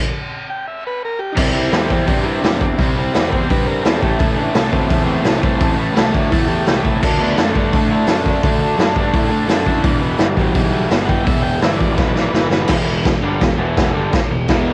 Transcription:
0.50 G5
0.68 E5
0.87 B4
1.05 A#4
1.19 G4
1.32 C3 D#4
1.37 C2 G3 C4 E4, kick, crash
1.53 C3 G3 C4
1.72 E2 C3 G3 C4, snare, open hi-hat
1.90 E2 C3 G3 C4, kick
2.07 G2 C3 G3 C4 G4, kick, open hi-hat
2.24 C3 G3 C4 E4
2.41 E2 C3 G3 C4 D4, snare, open hi-hat
2.61 C3 G3 C4 D4, kick
2.78 C2 C3 G3 C4, kick, open hi-hat
2.97 C3 G3 C4
3.12 E2 C3 G3 C4, snare, open hi-hat
3.29 E2 C3 G3 C4 B4, kick
3.34 C5
3.48 G2 C3 G3 C4 B4, kick, open hi-hat
3.66 C3 G3 C4 A#4
3.83 E2 C3 G3 C4 A4, snare, open hi-hat
4.00 A1 A2 E3 A3 G4, kick
4.19 A1 A2 E3 A3 E4, kick, open hi-hat
4.37 A2 E3 A3 D4
4.54 C2 A2 E3 A3, snare, open hi-hat
4.71 D2 A2 E3 A3 C4, kick
4.89 E2 A2 E3 A3, kick, open hi-hat
5.04 A2 E3 A3
5.23 C2 A2 E3 A3, snare, open hi-hat
5.39 A2 E3 A3, kick
5.59 A1 A2 E3 A3, kick, open hi-hat
5.76 A2 E3 A3
5.93 C2 A2 E3 A3, open hi-hat
5.97 A3, snare
6.12 D2 A2 E3 A3 D4, kick
6.30 E2 A2 E3 A3 E4, kick, open hi-hat
6.43 A2 F#4
6.48 E3 A3 G4
6.65 C2 A2 E3 A3, snare, open hi-hat
6.84 A2 E3 A3 E4, kick
7.02 D2 D3 A3 D4, kick, crash
7.19 D3 A3 B3 D4
7.37 F#2 D3 A3 D4, snare, open hi-hat
7.56 G2 D3 A3 D4, kick
7.72 A2 D3 A3 D4, kick, open hi-hat
7.91 D3 A3 D4
8.07 F#2 D3 A3 D4, snare, open hi-hat
8.26 D3 A3 D4, kick
8.42 D2 D3 A3 D4, kick, open hi-hat
8.60 D3 A3 D4
8.78 F#2 D3 A3 D4, snare, open hi-hat
8.96 G2 D3 A3 D4, kick
9.13 A2 D3 A3 D4 E4, kick, open hi-hat
9.28 D3 A3 D4 G#4 A4
9.47 F#2 D3 A3 D4, snare, open hi-hat
9.66 D3 A3 D4 E4, kick
9.83 E1 E2 B2 E3 D4, kick, open hi-hat
10.01 E2 B2 E3 B3
10.18 G1 E2 B2 E3 G3, snare, open hi-hat
10.36 A1 E2 B2 E3, kick
10.53 B1 E2 B2 E3, kick, open hi-hat
10.70 E2 B2 E3
10.89 G1 E2 B2 E3, snare, open hi-hat
11.05 E2 B2 E3 F#5 G5, kick
11.23 E2 B2 E3 E5, kick, open hi-hat
11.28 E1
11.42 E2 B2 E3 G5
11.61 G1 E2 B2 E3 E5, snare, open hi-hat
11.76 E2 B2 E3 D5
11.80 A1, kick
11.95 B1 E2 B2 E3 B4, kick, snare
12.14 E2 B2 E3 D5, snare
12.31 G1 E2 B2 E3 B4, snare
12.47 E2 B2 E3 A#4
12.51 B4, snare
12.68 E1 E2 B2 E3, kick, snare, crash
13.03 E1 E2 B2, kick, snare, crash
13.21 G1 G2 D3
13.25 G3
13.40 E1 E2 B2, kick, snare, crash
13.57 E1 E2 B2 E3
13.77 kick, snare, crash
13.93 G1 G2 D3 G3
14.12 muted overdriven electric guitar stroke, muted picked electric bass stroke, kick, snare, crash
14.31 E1 E2 B2
14.48 E1 E2 B2 E3, kick, snare, crash

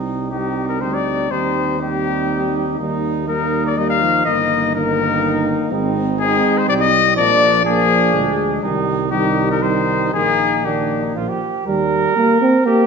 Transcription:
Already playing: C2 G3 C4 D#4
0.30 G3 C4 D#4 G4
0.69 A#4
0.81 D2 G3 C4 D#4 C5
0.94 D5
1.31 D#2 G3 C4 D#4 C5
1.80 G3 C4 D#4 G4
2.79 D#2 G3 A#3 D#4
3.28 G3 A#3 D#4 A#4
3.66 D5
3.77 G3 A#3 D#4 D#5
3.90 F5
4.02 F3
4.25 G1 D#3 A#3 D#4 D#5
4.76 D#3 A#3 D#4 A#4
5.71 G#1 G#3 C4 D#4
6.20 G#3 C4 D#4 G#4
6.58 C5
6.69 C2 G3 D5
6.80 D#5
7.17 A#1 F3 A#3 D4 D5
7.65 F3 A#3 D4 G#4
8.14 D2 G#3
8.63 C2 D#3 G3 D#4
9.11 D#3 G3 D#4 G4
9.51 A#4
9.62 D#3 G3 D#4 C5
10.13 A#1 D#3 A#3 D#4 G#4
10.65 D#3 A#3 D4 G4
11.03 D#4
11.16 A#1 F3 A#3 F4
11.29 G4
11.66 D#2 G3 A#4
12.16 A#3 G4 A#4
12.41 C4
12.66 A#3 G4 A#4

